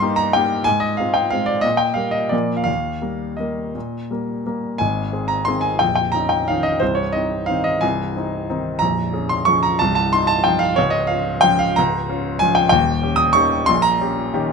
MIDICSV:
0, 0, Header, 1, 2, 480
1, 0, Start_track
1, 0, Key_signature, -3, "major"
1, 0, Tempo, 326442
1, 976, Time_signature, 3, 2, 24, 8
1, 2898, Tempo, 355450
1, 6258, Tempo, 336134
1, 6745, Key_signature, -4, "major"
1, 11058, Tempo, 329128
1, 16818, Tempo, 320342
1, 20946, End_track
2, 0, Start_track
2, 0, Title_t, "Grand piano"
2, 0, Program_c, 0, 0
2, 0, Control_c, 0, 64, 127
2, 0, Note_on_c, 0, 43, 68
2, 0, Note_on_c, 0, 84, 77
2, 0, Note_on_c, 0, 86, 109
2, 29, Note_on_c, 0, 58, 48
2, 33, Note_on_c, 0, 67, 56
2, 35, Note_on_c, 0, 63, 52
2, 237, Note_on_c, 0, 82, 98
2, 244, Note_off_c, 0, 84, 0
2, 459, Note_off_c, 0, 58, 0
2, 461, Note_off_c, 0, 67, 0
2, 462, Note_off_c, 0, 63, 0
2, 490, Note_on_c, 0, 79, 88
2, 491, Note_off_c, 0, 82, 0
2, 519, Note_on_c, 0, 58, 50
2, 528, Note_on_c, 0, 63, 45
2, 541, Note_on_c, 0, 67, 57
2, 939, Note_off_c, 0, 58, 0
2, 944, Note_off_c, 0, 63, 0
2, 946, Note_on_c, 0, 80, 106
2, 951, Note_off_c, 0, 67, 0
2, 971, Note_off_c, 0, 79, 0
2, 984, Note_on_c, 0, 44, 63
2, 1002, Control_c, 0, 64, 0
2, 1007, Note_off_c, 0, 86, 0
2, 1009, Note_off_c, 0, 43, 0
2, 1177, Note_on_c, 0, 75, 83
2, 1194, Note_off_c, 0, 80, 0
2, 1209, Control_c, 0, 64, 127
2, 1427, Note_on_c, 0, 77, 76
2, 1431, Note_off_c, 0, 75, 0
2, 1438, Note_off_c, 0, 44, 0
2, 1465, Note_on_c, 0, 56, 47
2, 1474, Note_on_c, 0, 60, 41
2, 1476, Note_on_c, 0, 65, 53
2, 1671, Note_on_c, 0, 79, 82
2, 1680, Note_off_c, 0, 77, 0
2, 1896, Note_off_c, 0, 56, 0
2, 1901, Note_off_c, 0, 60, 0
2, 1902, Note_off_c, 0, 65, 0
2, 1918, Note_on_c, 0, 77, 91
2, 1926, Note_off_c, 0, 79, 0
2, 1954, Note_on_c, 0, 56, 44
2, 1957, Note_on_c, 0, 60, 44
2, 1968, Note_on_c, 0, 65, 49
2, 2147, Note_on_c, 0, 74, 83
2, 2171, Note_off_c, 0, 77, 0
2, 2372, Note_on_c, 0, 75, 93
2, 2379, Note_off_c, 0, 56, 0
2, 2381, Note_off_c, 0, 60, 0
2, 2387, Note_off_c, 0, 65, 0
2, 2401, Note_off_c, 0, 74, 0
2, 2408, Note_on_c, 0, 46, 58
2, 2442, Control_c, 0, 64, 0
2, 2607, Note_on_c, 0, 79, 82
2, 2631, Note_off_c, 0, 75, 0
2, 2684, Control_c, 0, 64, 127
2, 2849, Note_on_c, 0, 77, 76
2, 2875, Note_off_c, 0, 79, 0
2, 2878, Note_on_c, 0, 55, 39
2, 2879, Note_off_c, 0, 46, 0
2, 2892, Note_on_c, 0, 58, 35
2, 2895, Note_on_c, 0, 70, 43
2, 3089, Note_on_c, 0, 75, 79
2, 3111, Note_off_c, 0, 77, 0
2, 3317, Note_off_c, 0, 55, 0
2, 3325, Note_off_c, 0, 58, 0
2, 3326, Note_off_c, 0, 70, 0
2, 3332, Note_on_c, 0, 74, 72
2, 3354, Note_off_c, 0, 75, 0
2, 3359, Note_on_c, 0, 46, 58
2, 3364, Note_on_c, 0, 53, 38
2, 3373, Note_on_c, 0, 58, 37
2, 3378, Note_on_c, 0, 70, 39
2, 3401, Control_c, 0, 64, 0
2, 3610, Control_c, 0, 64, 127
2, 3702, Note_on_c, 0, 77, 69
2, 3714, Note_off_c, 0, 74, 0
2, 3777, Note_off_c, 0, 77, 0
2, 3797, Note_on_c, 0, 77, 86
2, 3798, Note_off_c, 0, 53, 0
2, 3804, Note_off_c, 0, 58, 0
2, 3806, Note_off_c, 0, 70, 0
2, 3826, Note_on_c, 0, 39, 53
2, 3830, Note_off_c, 0, 46, 0
2, 3879, Control_c, 0, 64, 0
2, 4155, Control_c, 0, 64, 127
2, 4301, Note_off_c, 0, 39, 0
2, 4309, Note_on_c, 0, 55, 37
2, 4315, Note_on_c, 0, 70, 38
2, 4320, Note_on_c, 0, 58, 34
2, 4761, Note_off_c, 0, 55, 0
2, 4765, Note_off_c, 0, 70, 0
2, 4767, Note_off_c, 0, 58, 0
2, 4782, Note_on_c, 0, 75, 51
2, 4794, Note_off_c, 0, 77, 0
2, 4818, Note_on_c, 0, 55, 35
2, 4824, Note_on_c, 0, 58, 37
2, 4834, Note_on_c, 0, 70, 42
2, 5249, Note_off_c, 0, 55, 0
2, 5252, Note_off_c, 0, 58, 0
2, 5258, Note_off_c, 0, 70, 0
2, 5301, Note_on_c, 0, 46, 47
2, 5325, Control_c, 0, 64, 0
2, 5578, Control_c, 0, 64, 127
2, 5757, Note_off_c, 0, 46, 0
2, 5781, Note_on_c, 0, 55, 34
2, 5788, Note_on_c, 0, 58, 33
2, 5800, Note_on_c, 0, 70, 36
2, 6215, Note_off_c, 0, 55, 0
2, 6219, Note_off_c, 0, 58, 0
2, 6226, Note_off_c, 0, 70, 0
2, 6239, Note_off_c, 0, 75, 0
2, 6256, Note_on_c, 0, 55, 35
2, 6267, Note_on_c, 0, 58, 37
2, 6268, Note_on_c, 0, 70, 35
2, 6695, Note_off_c, 0, 55, 0
2, 6701, Note_off_c, 0, 58, 0
2, 6702, Note_off_c, 0, 70, 0
2, 6721, Note_on_c, 0, 80, 86
2, 6750, Note_on_c, 0, 44, 48
2, 6757, Note_on_c, 0, 32, 55
2, 6772, Control_c, 0, 64, 0
2, 7037, Control_c, 0, 64, 127
2, 7207, Note_off_c, 0, 44, 0
2, 7210, Note_off_c, 0, 32, 0
2, 7213, Note_on_c, 0, 60, 41
2, 7217, Note_on_c, 0, 68, 45
2, 7428, Note_on_c, 0, 82, 80
2, 7448, Note_off_c, 0, 80, 0
2, 7653, Note_off_c, 0, 60, 0
2, 7655, Note_off_c, 0, 68, 0
2, 7671, Note_on_c, 0, 84, 90
2, 7688, Note_off_c, 0, 82, 0
2, 7711, Note_on_c, 0, 51, 46
2, 7715, Note_on_c, 0, 60, 44
2, 7719, Note_on_c, 0, 68, 47
2, 7900, Note_on_c, 0, 80, 79
2, 7930, Note_off_c, 0, 84, 0
2, 8136, Note_off_c, 0, 51, 0
2, 8139, Note_off_c, 0, 60, 0
2, 8141, Note_off_c, 0, 68, 0
2, 8158, Note_off_c, 0, 80, 0
2, 8159, Note_on_c, 0, 79, 85
2, 8182, Note_on_c, 0, 22, 52
2, 8183, Note_on_c, 0, 34, 60
2, 8209, Control_c, 0, 64, 0
2, 8373, Note_off_c, 0, 79, 0
2, 8394, Note_on_c, 0, 79, 79
2, 8472, Control_c, 0, 64, 127
2, 8626, Note_on_c, 0, 82, 85
2, 8645, Note_off_c, 0, 22, 0
2, 8645, Note_off_c, 0, 34, 0
2, 8647, Note_off_c, 0, 79, 0
2, 8658, Note_on_c, 0, 61, 39
2, 8663, Note_on_c, 0, 63, 45
2, 8873, Note_on_c, 0, 79, 73
2, 8886, Note_off_c, 0, 82, 0
2, 9097, Note_off_c, 0, 61, 0
2, 9099, Note_off_c, 0, 63, 0
2, 9131, Note_off_c, 0, 79, 0
2, 9140, Note_on_c, 0, 77, 87
2, 9171, Note_on_c, 0, 51, 43
2, 9176, Note_on_c, 0, 61, 45
2, 9179, Note_on_c, 0, 63, 46
2, 9359, Note_on_c, 0, 75, 82
2, 9384, Note_off_c, 0, 77, 0
2, 9586, Note_off_c, 0, 51, 0
2, 9588, Note_off_c, 0, 61, 0
2, 9590, Note_off_c, 0, 63, 0
2, 9595, Note_on_c, 0, 72, 79
2, 9605, Note_off_c, 0, 75, 0
2, 9619, Note_on_c, 0, 24, 47
2, 9628, Note_on_c, 0, 36, 56
2, 9641, Control_c, 0, 64, 0
2, 9812, Note_on_c, 0, 73, 72
2, 9837, Note_off_c, 0, 72, 0
2, 9885, Control_c, 0, 64, 127
2, 10065, Note_off_c, 0, 73, 0
2, 10065, Note_on_c, 0, 75, 74
2, 10069, Note_off_c, 0, 24, 0
2, 10074, Note_off_c, 0, 36, 0
2, 10097, Note_on_c, 0, 63, 47
2, 10101, Note_on_c, 0, 60, 41
2, 10522, Note_off_c, 0, 63, 0
2, 10524, Note_off_c, 0, 60, 0
2, 10546, Note_on_c, 0, 77, 87
2, 10553, Note_off_c, 0, 75, 0
2, 10580, Note_on_c, 0, 51, 47
2, 10584, Note_on_c, 0, 60, 40
2, 10595, Note_on_c, 0, 63, 47
2, 10800, Note_on_c, 0, 75, 82
2, 10804, Note_off_c, 0, 77, 0
2, 11019, Note_off_c, 0, 51, 0
2, 11021, Note_off_c, 0, 60, 0
2, 11027, Note_off_c, 0, 63, 0
2, 11039, Note_on_c, 0, 80, 88
2, 11053, Note_off_c, 0, 75, 0
2, 11064, Note_on_c, 0, 24, 51
2, 11064, Note_on_c, 0, 36, 63
2, 11090, Control_c, 0, 64, 0
2, 11311, Control_c, 0, 64, 127
2, 11530, Note_off_c, 0, 24, 0
2, 11531, Note_off_c, 0, 36, 0
2, 11558, Note_on_c, 0, 60, 41
2, 11565, Note_on_c, 0, 63, 44
2, 11987, Note_off_c, 0, 60, 0
2, 11992, Note_off_c, 0, 63, 0
2, 12037, Note_on_c, 0, 51, 45
2, 12047, Note_on_c, 0, 63, 50
2, 12048, Note_on_c, 0, 60, 46
2, 12459, Note_off_c, 0, 51, 0
2, 12465, Note_off_c, 0, 60, 0
2, 12465, Note_off_c, 0, 63, 0
2, 12469, Note_on_c, 0, 82, 93
2, 12491, Note_off_c, 0, 80, 0
2, 12504, Note_on_c, 0, 22, 56
2, 12506, Note_on_c, 0, 34, 59
2, 12527, Control_c, 0, 64, 0
2, 12730, Control_c, 0, 64, 127
2, 12965, Note_off_c, 0, 22, 0
2, 12966, Note_off_c, 0, 34, 0
2, 12972, Note_on_c, 0, 61, 44
2, 12972, Note_on_c, 0, 68, 45
2, 13204, Note_off_c, 0, 82, 0
2, 13207, Note_on_c, 0, 84, 87
2, 13412, Note_off_c, 0, 61, 0
2, 13412, Note_off_c, 0, 68, 0
2, 13438, Note_on_c, 0, 85, 94
2, 13458, Note_off_c, 0, 84, 0
2, 13470, Note_on_c, 0, 53, 45
2, 13470, Note_on_c, 0, 61, 45
2, 13484, Note_on_c, 0, 68, 48
2, 13692, Note_on_c, 0, 82, 87
2, 13695, Note_off_c, 0, 85, 0
2, 13899, Note_off_c, 0, 61, 0
2, 13900, Note_off_c, 0, 53, 0
2, 13907, Note_off_c, 0, 68, 0
2, 13929, Note_on_c, 0, 81, 99
2, 13937, Note_off_c, 0, 82, 0
2, 13965, Note_on_c, 0, 36, 65
2, 13967, Control_c, 0, 64, 0
2, 13977, Note_on_c, 0, 24, 56
2, 14146, Note_off_c, 0, 81, 0
2, 14168, Note_on_c, 0, 81, 88
2, 14177, Control_c, 0, 64, 127
2, 14412, Note_off_c, 0, 81, 0
2, 14415, Note_off_c, 0, 36, 0
2, 14421, Note_off_c, 0, 24, 0
2, 14421, Note_on_c, 0, 84, 86
2, 14441, Note_on_c, 0, 63, 48
2, 14457, Note_on_c, 0, 65, 49
2, 14633, Note_on_c, 0, 81, 92
2, 14658, Note_off_c, 0, 84, 0
2, 14862, Note_off_c, 0, 63, 0
2, 14870, Note_off_c, 0, 65, 0
2, 14873, Note_on_c, 0, 79, 86
2, 14885, Note_off_c, 0, 81, 0
2, 14907, Note_on_c, 0, 53, 44
2, 14911, Note_on_c, 0, 63, 50
2, 14914, Note_on_c, 0, 65, 54
2, 15097, Note_on_c, 0, 77, 95
2, 15127, Note_off_c, 0, 79, 0
2, 15331, Note_off_c, 0, 53, 0
2, 15333, Note_off_c, 0, 63, 0
2, 15335, Note_off_c, 0, 65, 0
2, 15346, Note_on_c, 0, 73, 92
2, 15352, Note_off_c, 0, 77, 0
2, 15373, Note_on_c, 0, 25, 56
2, 15373, Note_on_c, 0, 37, 65
2, 15402, Control_c, 0, 64, 0
2, 15555, Note_on_c, 0, 75, 85
2, 15590, Note_off_c, 0, 73, 0
2, 15616, Control_c, 0, 64, 127
2, 15799, Note_on_c, 0, 77, 88
2, 15814, Note_off_c, 0, 75, 0
2, 15825, Note_off_c, 0, 25, 0
2, 15825, Note_off_c, 0, 37, 0
2, 15828, Note_on_c, 0, 61, 45
2, 15838, Note_on_c, 0, 65, 50
2, 16269, Note_off_c, 0, 61, 0
2, 16275, Note_off_c, 0, 65, 0
2, 16290, Note_on_c, 0, 79, 104
2, 16304, Note_off_c, 0, 77, 0
2, 16322, Note_on_c, 0, 53, 55
2, 16330, Note_on_c, 0, 61, 48
2, 16338, Note_on_c, 0, 65, 57
2, 16553, Note_on_c, 0, 77, 92
2, 16557, Note_off_c, 0, 79, 0
2, 16769, Note_off_c, 0, 53, 0
2, 16773, Note_off_c, 0, 61, 0
2, 16777, Note_off_c, 0, 65, 0
2, 16805, Note_on_c, 0, 82, 97
2, 16808, Note_off_c, 0, 77, 0
2, 16837, Note_on_c, 0, 25, 58
2, 16838, Note_on_c, 0, 37, 69
2, 16844, Control_c, 0, 64, 0
2, 17093, Control_c, 0, 64, 127
2, 17297, Note_off_c, 0, 25, 0
2, 17298, Note_off_c, 0, 37, 0
2, 17304, Note_on_c, 0, 61, 53
2, 17306, Note_on_c, 0, 65, 50
2, 17739, Note_off_c, 0, 61, 0
2, 17740, Note_off_c, 0, 65, 0
2, 17751, Note_on_c, 0, 80, 107
2, 17780, Note_off_c, 0, 82, 0
2, 17788, Note_on_c, 0, 53, 58
2, 17797, Note_on_c, 0, 61, 51
2, 17800, Note_on_c, 0, 65, 56
2, 17985, Note_on_c, 0, 79, 89
2, 18007, Note_off_c, 0, 80, 0
2, 18180, Note_off_c, 0, 79, 0
2, 18202, Note_on_c, 0, 79, 108
2, 18209, Note_off_c, 0, 53, 0
2, 18214, Note_off_c, 0, 61, 0
2, 18216, Note_off_c, 0, 65, 0
2, 18233, Note_on_c, 0, 27, 65
2, 18242, Note_on_c, 0, 39, 72
2, 18284, Control_c, 0, 64, 0
2, 18499, Control_c, 0, 64, 127
2, 18702, Note_off_c, 0, 27, 0
2, 18703, Note_on_c, 0, 61, 49
2, 18706, Note_off_c, 0, 39, 0
2, 18713, Note_on_c, 0, 67, 58
2, 18900, Note_on_c, 0, 87, 108
2, 18946, Note_off_c, 0, 79, 0
2, 19153, Note_on_c, 0, 85, 108
2, 19158, Note_off_c, 0, 61, 0
2, 19163, Note_off_c, 0, 67, 0
2, 19183, Note_off_c, 0, 87, 0
2, 19184, Note_on_c, 0, 51, 59
2, 19193, Note_on_c, 0, 61, 55
2, 19202, Note_on_c, 0, 67, 59
2, 19630, Note_off_c, 0, 51, 0
2, 19635, Note_off_c, 0, 61, 0
2, 19640, Note_off_c, 0, 67, 0
2, 19652, Note_on_c, 0, 84, 112
2, 19664, Note_off_c, 0, 85, 0
2, 19678, Note_on_c, 0, 46, 69
2, 19689, Note_on_c, 0, 34, 70
2, 19720, Control_c, 0, 64, 0
2, 19892, Note_on_c, 0, 82, 105
2, 19910, Note_off_c, 0, 84, 0
2, 19933, Control_c, 0, 64, 127
2, 20149, Note_off_c, 0, 46, 0
2, 20155, Note_off_c, 0, 34, 0
2, 20177, Note_on_c, 0, 61, 49
2, 20183, Note_on_c, 0, 67, 58
2, 20613, Note_off_c, 0, 61, 0
2, 20617, Note_off_c, 0, 67, 0
2, 20666, Note_on_c, 0, 51, 61
2, 20668, Note_on_c, 0, 61, 53
2, 20673, Note_on_c, 0, 67, 64
2, 20946, Note_off_c, 0, 51, 0
2, 20946, Note_off_c, 0, 61, 0
2, 20946, Note_off_c, 0, 67, 0
2, 20946, Note_off_c, 0, 82, 0
2, 20946, End_track
0, 0, End_of_file